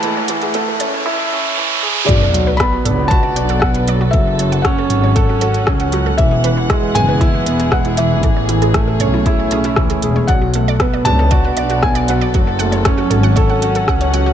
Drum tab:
HH |x-xxx-x---------|x-x-x-x-x-xx-xx-|x-xxx-x-x-xx-xx-|x-x-x-x-x-xx-xx-|
SD |----------------|----r-------r---|----r-------r---|----r-------r---|
T2 |------o---------|------o---------|------o---------|------o---------|
BD |----------------|o---o---o---o---|o---o---o---o---|o---o---o---o---|

HH |x-xxx-x-x-xx-xx-|x-x-x-x-x-xx-xx-|x-xxx-x-x-xx-xx-|
SD |----r-------r---|----r-------r---|----r-------r---|
T2 |------o---------|------o---------|------o---------|
BD |o---o---o---o---|o---o---o---o---|o---o---o---o---|